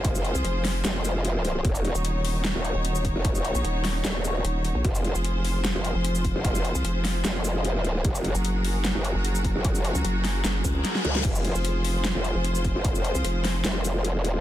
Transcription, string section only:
\new Staff \with { instrumentName = "String section" } { \time 4/4 \key f \phrygian \tempo 4 = 150 << { <f f' c''>1 | <ees ees' des''>1~ | <ees ees' des''>1 | <f f' c''>1~ |
<f f' c''>1 | <ges ges' bes'>1~ | <ges ges' bes'>1 | <f f' c''>1~ |
<f f' c''>1 | } \\ { aes'1 | ges'1~ | ges'1 | aes'1~ |
aes'1~ | aes'1~ | aes'1~ | aes'1~ |
aes'1 | } >> }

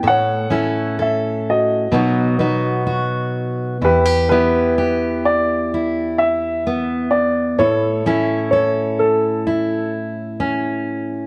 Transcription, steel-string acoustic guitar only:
\new Staff \with { instrumentName = "Steel-string acoustic guitar" } { \time 4/4 \key e \dorian \tempo 4 = 64 << { a'8 <cis' e' a'>8 a'4 <fis b dis' fis'>8 <b dis' fis'>8 fis'4 | e'16 g'16 <b e' g'>8 g'4 e'4 b4 | a'8 <cis' e' a'>8 a'4 e'4 cis'4 | } \\ { a,2 b,2 | e,1 | a,1 | } >> }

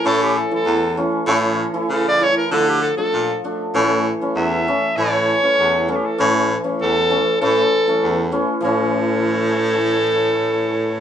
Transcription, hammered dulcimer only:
\new Staff \with { instrumentName = "Hammered dulcimer" } { \time 2/4 \key a \major \tempo 4 = 98 <e a cis'>8 r16 <e a e'>16 r8 <e a cis'>16 r16 | <e a cis'>8 r16 <e a e'>16 r8 <e a e'>16 r16 | <f a d'>8 r16 <f a d'>16 r8 <f a d'>16 r16 | <e a cis'>8 r16 <e a cis'>16 r8 <e a cis'>16 r16 |
<e a e'>8 r16 <e a cis'>16 r8 <e a cis'>16 r16 | <e a cis'>8 r16 <e a cis'>16 r8 <e a cis'>16 r16 | <e a cis'>8 r16 <e a cis'>16 r8 <e a cis'>16 r16 | <e a cis'>2~ |
<e a cis'>2 | }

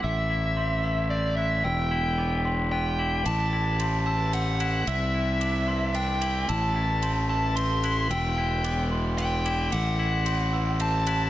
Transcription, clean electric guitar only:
\new Staff \with { instrumentName = "Clean electric guitar" } { \time 3/4 \key a \dorian \tempo 4 = 111 a,8 e'8 c'8 e8 c'8 e'8 | e,8 e'8 b8 e8 b8 e'8 | a,8 e'8 c'8 e8 c'8 e'8 | c8 e'8 d'8 e8 d'8 e'8 |
a,8 e'8 c'8 e8 c'8 e'8 | e,8 e'8 b8 e8 b8 e'8 | a,8 e'8 c'8 e8 c'8 e'8 | }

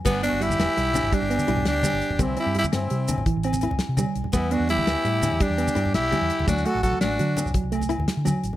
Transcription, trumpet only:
\new Staff \with { instrumentName = "Trumpet" } { \time 12/8 \key g \major \tempo 4. = 112 d'8 fis'8 g'2 g'4. g'4. | e'8 g'8 g'8 e'4. r2. | e'8 fis'8 g'2 g'4. g'4. | fis'8 a'8 a'8 fis'4. r2. | }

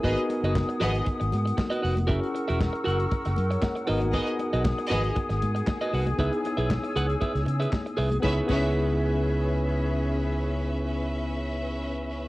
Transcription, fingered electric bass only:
\new Staff \with { instrumentName = "Fingered electric bass" } { \clef bass \time 4/4 \key cis \dorian \tempo 4 = 117 gis,,16 r8 fis,,8 r16 gis,,8 r16 gis,,16 gis,8 r8 eis,,8 | fis,,16 r8 e,,8 r16 fis,,8 r16 fis,,16 fis,8 r8 gis,,8~ | gis,,16 r8 b,,8 r16 gis,,8 r16 gis,,16 gis,8 r8 bis,,8 | cis,16 r8 b,,8 r16 cis,8 r16 cis,16 cis8 r8 bis,,8 |
cis,16 r16 cis,2.~ cis,8~ | cis,1 | }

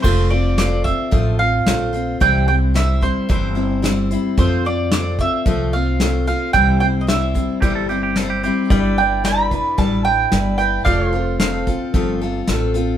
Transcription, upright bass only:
\new Staff \with { instrumentName = "Upright bass" } { \clef bass \time 4/4 \key f \major \tempo 4 = 111 f,,2 a,,4 bes,,4 | c,2 g,,2 | f,2 c,2 | c,2 g,,2 |
g,,2 a,,4 g,,4 | f,,2 g,,4 a,,4 | }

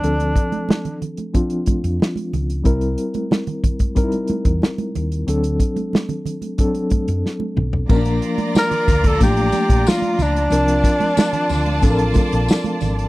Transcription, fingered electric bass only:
\new Staff \with { instrumentName = "Fingered electric bass" } { \clef bass \time 4/4 \key bes \lydian \tempo 4 = 92 d,8 r2 r16 f,16 r8 cis,8 | c,8 r2 r16 e,16 r8 ees,8 | d,8 r2 r16 fis,16 r8 b,,8 | bes,,8 r4 d,8 a,,8 r16 bes,,16 r8 cis,8 |
c,8 r4 d,8 a,,8 r16 bes,,16 r8 aes,,8 | }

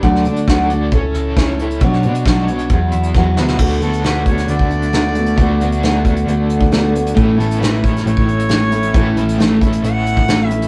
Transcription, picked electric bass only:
\new Staff \with { instrumentName = "Picked electric bass" } { \clef bass \time 4/4 \key d \lydian \tempo 4 = 135 d,8 d8 d,4 cis,8 cis,4. | b,,8 b,8 b,,4 e,8 e,8 e,8 d,8 | d,8 d,4. d,2 | d,8 d,4. d,2 |
a,,8 a,,4. a,,2 | a,,8 a,,4. a,,2 | }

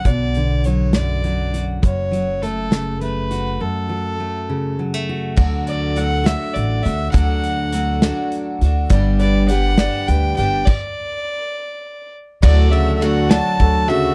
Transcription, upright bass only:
\new Staff \with { instrumentName = "Upright bass" } { \clef bass \time 6/8 \key d \major \tempo 4. = 68 b,,2. | fis,,2. | r2. | d,2 a,,8 d,8 |
d,2 r8 d,8 | g,,2 d,8 g,,8 | r2. | d,2 d,4 | }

